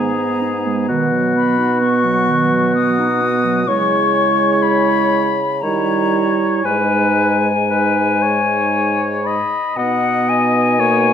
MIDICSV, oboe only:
0, 0, Header, 1, 2, 480
1, 0, Start_track
1, 0, Key_signature, 5, "minor"
1, 0, Tempo, 928793
1, 465, Time_signature, 3, 2, 24, 8
1, 1897, Tempo, 964630
1, 2377, Tempo, 1010101
1, 3337, Tempo, 1041667
1, 4777, Tempo, 1003344
1, 5425, End_track
2, 0, Start_track
2, 0, Title_t, "Oboe"
2, 0, Program_c, 0, 68
2, 0, Note_on_c, 0, 68, 39
2, 443, Note_off_c, 0, 68, 0
2, 458, Note_on_c, 0, 66, 39
2, 1875, Note_off_c, 0, 66, 0
2, 1905, Note_on_c, 0, 73, 53
2, 2769, Note_off_c, 0, 73, 0
2, 2849, Note_on_c, 0, 73, 46
2, 3338, Note_on_c, 0, 71, 45
2, 3345, Note_off_c, 0, 73, 0
2, 3768, Note_off_c, 0, 71, 0
2, 3818, Note_on_c, 0, 71, 47
2, 4061, Note_on_c, 0, 73, 45
2, 4067, Note_off_c, 0, 71, 0
2, 4540, Note_on_c, 0, 75, 41
2, 4547, Note_off_c, 0, 73, 0
2, 4778, Note_off_c, 0, 75, 0
2, 4780, Note_on_c, 0, 75, 67
2, 5264, Note_on_c, 0, 73, 59
2, 5271, Note_off_c, 0, 75, 0
2, 5425, Note_off_c, 0, 73, 0
2, 5425, End_track
0, 0, End_of_file